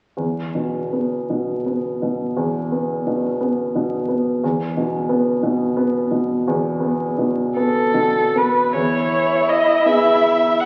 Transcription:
0.17 E2
0.55 B2
0.93 B3
1.30 B2
1.66 B3
2.02 B2
2.36 E2
2.72 B3
3.07 B2
3.41 B3
3.75 B2
4.08 B3
4.44 E2
4.77 B2
5.09 B3
5.43 B2
5.77 B3
6.11 B2
6.47 E2
6.80 B3
7.18 B2
7.56 B3 A4
7.94 B2
8.36 B3 B4
8.74 E2 E4 C#5
9.49 D#5
9.86 B3 E4 G#4 E5
10.60 F#5

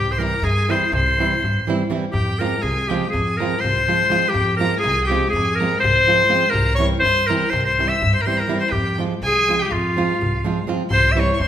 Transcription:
Already playing: C2 G4 G5
0.12 C5 C6
0.18 E3 G3 C4 E4 A#4, darbuka tek
0.22 A#5
0.32 darbuka tek
0.42 G2 G#4 G#5, darbuka tek
0.57 darbuka tek
0.69 E3 G3 C4 E4 C5 C6, darbuka tek
0.92 C2 C5 C6, darbuka tek, darbuka dum
1.07 darbuka tek
1.18 E3 G3 C4 E4, darbuka tek
1.33 darbuka tek
1.42 G2, darbuka dum
1.56 darbuka tek
1.67 E3 G3 C4 E4, darbuka tek
1.80 darbuka tek
1.90 E3 G3 C4 E4, darbuka tek
2.03 darbuka tek
2.12 F2 G4 G5, darbuka dum
2.26 darbuka tek
2.39 F3 G#3 C4 F4 A#4 A#5, darbuka tek
2.62 C2 G#4 G#5, darbuka tek
2.88 F3 G#3 C4 F4 G4 G5, darbuka tek
3.02 darbuka tek
3.10 G#4 G#5, darbuka tek, darbuka dum
3.14 F2
3.28 darbuka tek
3.37 F3 G#3 A#4 A#5, darbuka tek
3.41 C4 F4
3.59 C5 C6
3.64 C2, darbuka dum
3.88 F3 G#3 C4 F4, darbuka tek
4.10 F3 G#3 C4 F4, darbuka tek
4.29 G4 G5
4.34 F2, darbuka dum
4.47 darbuka tek
4.56 F3 G#3 A#4 A#5
4.61 C4 F4, darbuka tek
4.79 G#4 G#5
4.84 C2, darbuka tek
4.98 darbuka tek
5.04 G4 G5
5.09 F3 G#3 C4 F4, darbuka tek
5.24 darbuka tek
5.30 F2 G#4 G#5
5.36 darbuka tek, darbuka dum
5.50 darbuka tek
5.55 A#4 A#5
5.60 F3 G#3 C4 F4, darbuka tek
5.80 C2 C5 C6
5.84 darbuka dum
6.07 F3 G#3 C4 F4, darbuka tek
6.29 F3 G#3 C4 F4, darbuka tek
6.50 C2 A#4 A#5
6.55 darbuka dum
6.69 darbuka tek
6.75 E3 C#5 C#6
6.79 G3 C4 E4, darbuka tek
7.00 G2 C5 C6
7.05 darbuka tek
7.18 darbuka tek
7.27 E3 G3 A#4 A#5, darbuka tek
7.31 C4 E4
7.42 darbuka tek
7.49 C2 C5 C6
7.53 darbuka tek, darbuka dum
7.65 C5 C6, darbuka tek
7.79 E3 G3 C4 E4, darbuka tek
7.88 E5 E6
8.02 G2, darbuka dum
8.14 C5 C6
8.21 A#4 A#5 C6
8.26 E3 G3 C4 E4 C5, darbuka tek
8.37 A#4 A#5, darbuka tek
8.47 E3 G3 C4 E4, darbuka tek
8.59 C5 C6
8.70 F2 G4 G5, darbuka dum
8.86 darbuka tek
8.98 F3 G#3 C4 F4, darbuka tek
9.10 darbuka tek
9.22 C2 G#4 G#5, darbuka tek
9.48 F3 G#3 C4 F4, darbuka tek
9.59 G4 G5
9.69 F2 F4 F5, darbuka tek, darbuka dum
9.85 darbuka tek
9.97 F3 G#3 C4 F4, darbuka tek
10.21 C2, darbuka dum
10.44 F3 G#3 C4 F4, darbuka tek
10.67 F3 G#3 C4 F4, darbuka tek
10.81 darbuka tek
10.90 C2 C5 C6, darbuka dum
11.09 E5 E6
11.15 E3 G3 C4 E4 C#6, darbuka tek
11.20 C#5
11.29 C#6, darbuka tek
11.36 G2 C#5 C6
11.40 C5, darbuka tek

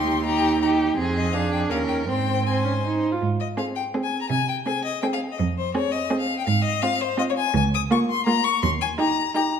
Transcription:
Already playing: D#2 D#4 G4 C6
0.25 D#4 G4 A#5
0.61 D#4 G4 A#5
0.97 F2 C4 G#4
1.16 D#5
1.33 D4 G#4 F5
1.52 G5
1.70 D#2 C#4 A#4 F5
1.88 G5
2.08 G#2 C4 C5 G5
2.46 C4 C5 G#5
2.65 C#4
2.83 D#4
3.12 F4
3.22 G#2
3.40 D#5
3.58 C4 G#4 F5
3.75 G5
3.95 C4 G#4
4.03 G#5
4.21 A#5
4.30 C3 G#5
4.49 G5
4.66 C4 G#4 G#5
4.84 D#5
5.02 C4 G#4 G5
5.13 F5
5.32 D#5
5.39 F2
5.58 C5
5.75 C4 G#4 C#5
5.92 D#5
6.10 C4 G#4
6.20 F5
6.39 G5
6.46 G#2 F5
6.64 D#5
6.82 C4 F4 F5
7.01 C5
7.18 C4 F4 D#5
7.30 C#5
7.37 G#5
7.54 C#2 G#5
7.74 D#6
7.91 A#3 F4 C#6
8.10 C6
8.26 A#3 F4 A#5
8.44 C#6
8.62 D#2 C6
8.81 G#5
8.98 D#4 G4 A#5
9.35 D#4 G4 A#5

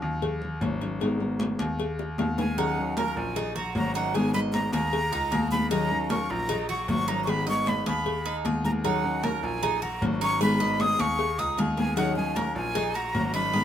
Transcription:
Already playing: F#3 C#4 D#4 A#4
0.02 D#2, high conga
0.22 muted nylon-string guitar stroke, cowbell, high conga, low conga
0.42 high conga, low conga
0.61 G#1 F#3 C#4 D#4 A#4, cowbell, high conga
0.81 F#3 C#4 D#4 A#4, cowbell, high conga
1.00 D#3 G#3 B3 D#4 A#4, cowbell, high conga
1.20 G#3 B3 D#4 A#4, high conga
1.40 cowbell, high conga
1.59 D#2, cowbell, high conga
1.79 muted nylon-string guitar stroke, cowbell, high conga
1.99 high bongo, high conga
2.18 D#2 G#3 B3 D#4 A#4, cowbell, high bongo, high conga
2.38 G#3 B3 D#4 A#4 G#5, cowbell, low bongo, high conga
2.57 D#3 F#3 C#4 D#4 A#4 F#5, cowbell, high conga
2.77 F#3 C#4 D#4 A#4, high conga
2.97 A#4 A#5, cowbell, high conga
3.16 A#1 G#5, high conga
3.36 D#4, muted nylon-string guitar stroke, cowbell, high conga, low conga
3.56 F#4 A#5, high conga, low conga
3.75 G#1 F#3 C#4 D#4 A#4 A#5, cowbell, high conga
3.95 F#3 C#4 D#4 A#4 F#5, cowbell, high conga
4.14 D#3 G#3 B3 D#4 G#4 A#4 G#5, cowbell, high conga
4.34 G#3 B3 D#4 A#4 D#5 B5, high conga
4.53 A#5, cowbell, high conga
4.72 D#2 G#4 A#5, cowbell, high conga
4.93 muted nylon-string guitar stroke, cowbell, high conga
5.12 C#2 D#4, high conga
5.31 D#2 G#3 B3 D#4 G#4 A#4, cowbell, high conga
5.51 G#3 B3 D#4 A#4 B5, cowbell, high conga
5.71 D#3 F#3 C#4 D#4 A#4 A#5, cowbell
5.90 F#3 C#4 D#4 A#4, high conga
6.10 A#4 C#6, cowbell, high conga
6.30 A#1 A#5, high conga
6.49 D#4, muted nylon-string guitar stroke, cowbell, high conga, low conga
6.69 F#4 C#6, high conga, low conga
6.88 G#1 F#3 C#4 D#4 A#4 C#6, cowbell, high conga
7.08 F#3 C#4 D#4 A#4 A#5, cowbell
7.24 D#3 G#3 G#4 C#6, cowbell, high conga
7.28 B3 D#4 A#4 B5
7.47 G#3 B3 D#4 A#4 D#5 C#6, high conga
7.66 B5, cowbell, high conga
7.86 D#2 G#4 B5, cowbell, high conga
8.05 muted nylon-string guitar stroke, cowbell, high conga
8.25 D#4, high conga
8.45 D#2 G#3 B3 D#4 G#4 A#4, cowbell, high conga
8.64 G#3 B3 D#4 A#4 A#5, cowbell, high conga
8.84 D#3 F#3 C#4 D#4 A#4 F#5, cowbell, high conga
9.04 F#3 C#4 D#4 A#4, high conga
9.23 A#4 A#5, cowbell, high conga
9.43 A#1 G#5, high conga
9.62 D#4, muted nylon-string guitar stroke, cowbell, high conga, low conga
9.82 F#4 A#5, high conga, low conga
10.01 G#1 F#3 C#4 D#4 A#4, cowbell, high conga
10.21 F#3 C#4 D#4 A#4 C#6, cowbell, high conga
10.40 D#3 G#3 B3 D#4 G#4 A#4 B5, cowbell, high conga
10.60 G#3 B3 D#4 A#4 D#5, high conga
10.80 D#6, cowbell, high conga
10.99 D#2 G#4 C#6, cowbell, high conga
11.19 muted nylon-string guitar stroke, cowbell, high conga
11.38 C#2 D#4 D#6, high conga
11.57 D#2 G#3 B3 D#4 G#4 A#4, cowbell, high conga
11.77 G#3 B3 D#4 A#4 G#5, cowbell, high conga
11.97 D#3 F#3 C#4 D#4 A#4 F#5, cowbell
12.16 F#3 C#4 D#4 A#4 G#5, high conga
12.36 A#4 A#5, cowbell, high conga
12.55 A#1 G#5, high conga
12.75 D#4, muted nylon-string guitar stroke, cowbell, high conga, low conga
12.95 F#4 A#5, high conga
13.14 G#1 F#3 C#4 D#4 A#4, cowbell, high conga
13.34 F#3 C#4 D#4 A#4 B5, cowbell
13.53 D#3 G#3 B3 D#4 G#4 A#4

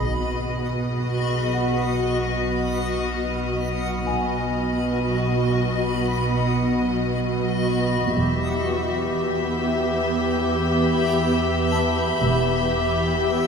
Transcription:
Already playing: C#4
0.00 B1 B2 B3 F#4 D#5 B5 D#6 F#6
1.02 F6
1.54 F#4 F#5
4.07 B1 B2 B3 F#4 D#5 G#5 B5
8.14 E1 E2 B3 G4 E5 B5 E6
9.19 G6
11.72 A5
12.21 E1 E2 B3 G4 E5 B5

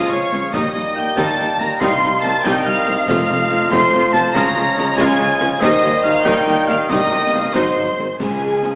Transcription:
Already playing: C#3 F3 G#3 F4 D#5 F5 D#6
0.09 C#2 G#3 F4 C#5 C#6
0.32 C#2 F3 C#4, snare
0.53 D#2 A#2 D#3 G3 D#4 G4 D#5 D#6, concert bass drum, snare, crash
0.74 D#2 G3 D#4
0.95 D#2 D#3 A#3 G5 G6
1.16 D#2 G3 D#4 G5 A5 A6, concert bass drum, snare
1.37 D#2 G3 D#4
1.59 D#2 D#3 A#3 A#5 A#6, snare
1.80 C2 C3 G3 D#4 F5 C6 C7, concert bass drum, snare
2.02 C2 G3 D#4
2.22 C2 D#3 C4 A5 A6, snare
2.44 C2 G3 D#4 D#5 G5 G6, concert bass drum, snare
2.65 C2 G3 D#4 F5 F6
2.87 C2 D#3 C4, snare
3.07 F1 F2 F3 A3 F4 F5 F6, concert bass drum, snare, crash
3.29 F1 F2 A3 F4
3.50 F1 F2 F3 C4
3.70 F1 F2 A3 F4 C5 C6 C7, concert bass drum, snare
3.92 F1 F2 A3 F4
4.12 F1 F2 F3 C4 A5 A6, snare
4.33 C#2 C#3 G#3 C#4 F4 C#5 A#5 A#6, concert bass drum, snare
4.55 C#2 C#3 G#3 F4
4.77 C#2 C#3 F3 C#4, snare
4.97 C#2 C#3 G#3 F4 G#5 G#6, concert bass drum, snare
5.19 C#2 C#3 G#3 F4
5.40 C#2 C#3 F3 C#4, snare
5.60 D#2 A#2 D#3 G3 D#4 C5 D#5 D#6, concert bass drum, snare, crash
5.82 D#2 D#3 G3 D#4
6.04 D#2 D#3 A#3 F5 F6
6.25 D#2 D#3 G3 D#4 A#4 G5 G6, concert bass drum, snare
6.47 D#2 D#3 G3 D#4
6.68 D#2 D#3 A#3 F5 F6, snare
6.89 C2 G2 C3 G3 D#4 D#5 D#6, concert bass drum, snare
7.11 C2 C3 G3 D#4 G5
7.32 C2 C3 D#3 C4 F5
7.53 G#1 G#2 F#3 D#4 C5 D#5 C6, concert bass drum, snare
7.76 G#1 G#2 F#3 D#4
7.98 G#1 G#2 D#3 C4
8.19 C#2 C#3 G#3 C#4 G#4 G#5, concert bass drum, snare, crash
8.62 F3 G#3, snare

